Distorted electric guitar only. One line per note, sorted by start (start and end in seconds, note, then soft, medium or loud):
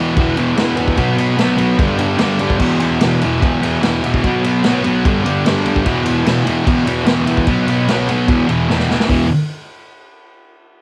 0.00 0.15 E2 medium
0.00 0.17 B2 medium
0.00 0.18 E3 loud
0.00 0.99 B3 medium
0.16 0.39 E2 medium
0.16 0.37 B2 loud
0.16 0.36 E3 loud
0.37 0.55 E2 medium
0.37 0.57 B2 medium
0.37 0.59 E3 loud
0.56 0.96 E2 medium
0.56 0.79 B2 medium
0.56 0.75 E3 medium
0.76 0.96 B2 medium
0.76 0.96 E3 medium
0.97 1.36 B2 loud
0.97 1.19 F#3 medium
0.97 1.17 B3 loud
1.17 1.38 F#3 medium
1.17 1.40 B3 medium
1.37 1.59 B2 medium
1.37 1.57 F#3 medium
1.37 1.57 B3 medium
1.57 1.79 B2 medium
1.57 1.78 F#3 medium
1.57 4.26 B3 medium
1.77 1.99 G2 loud
1.77 1.98 D3 loud
1.77 1.97 G3 loud
1.98 2.17 G2 medium
1.98 2.19 D3 medium
1.98 2.20 G3 medium
2.18 2.58 G2 medium
2.18 2.41 D3 medium
2.18 2.39 G3 medium
2.40 2.60 D3 medium
2.40 2.59 G3 medium
2.59 3.00 E2 medium
2.59 2.82 B2 loud
2.59 2.79 E3 loud
2.80 3.01 B2 medium
2.80 3.03 E3 medium
3.01 3.24 E2 medium
3.01 3.22 B2 medium
3.01 3.21 E3 loud
3.22 3.39 E2 medium
3.22 3.41 B2 medium
3.22 3.42 E3 medium
3.41 3.64 E2 medium
3.41 3.62 B2 medium
3.41 3.60 E3 medium
3.62 3.80 E2 medium
3.62 3.82 B2 medium
3.62 3.83 E3 medium
3.81 4.22 E2 medium
3.81 4.05 B2 medium
3.81 4.02 E3 medium
4.03 4.22 B2 medium
4.03 4.22 E3 medium
4.23 4.63 B2 loud
4.23 4.45 F#3 loud
4.23 4.43 B3 loud
4.43 4.65 F#3 medium
4.43 4.67 B3 medium
4.64 4.86 B2 medium
4.64 4.84 F#3 medium
4.64 4.84 B3 medium
4.84 5.05 B2 medium
4.84 5.04 F#3 medium
4.84 7.49 B3 loud
5.04 5.25 G2 loud
5.04 5.24 D3 loud
5.04 5.22 G3 loud
5.24 5.44 G2 medium
5.24 5.46 D3 medium
5.24 5.47 G3 loud
5.45 5.84 G2 medium
5.45 5.67 D3 medium
5.45 5.64 G3 loud
5.65 5.86 D3 medium
5.65 5.84 G3 medium
5.85 6.24 E2 medium
5.85 6.07 B2 loud
5.85 6.04 E3 loud
6.05 6.25 B2 medium
6.05 6.27 E3 medium
6.26 6.47 E2 medium
6.26 6.46 B2 medium
6.26 6.44 E3 medium
6.45 6.64 E2 medium
6.45 6.65 B2 medium
6.45 6.67 E3 loud
6.65 6.87 E2 medium
6.65 6.86 B2 medium
6.65 6.84 E3 medium
6.85 7.04 E2 medium
6.85 7.06 B2 medium
6.85 7.07 E3 loud
7.05 7.46 E2 medium
7.05 7.28 B2 medium
7.05 7.26 E3 medium
7.27 7.45 B2 medium
7.27 7.46 E3 medium
7.46 7.87 B2 medium
7.46 7.69 F#3 loud
7.46 7.66 B3 loud
7.67 7.89 F#3 medium
7.67 7.90 B3 medium
7.89 8.10 B2 medium
7.89 8.09 F#3 medium
7.89 8.06 B3 medium
8.08 8.28 B2 medium
8.08 8.28 F#3 medium
8.08 8.27 B3 loud
8.28 8.49 E2 loud
8.28 8.48 B2 loud
8.28 8.46 E3 loud
8.47 8.68 E2 medium
8.47 8.70 B2 medium
8.47 8.71 E3 medium
8.69 9.08 E2 medium
8.69 8.91 B2 medium
8.69 8.88 E3 loud
8.89 9.08 B2 medium
8.89 9.08 E3 medium
9.09 9.25 E2 loud
9.09 9.25 B2 loud
9.09 9.26 E3 loud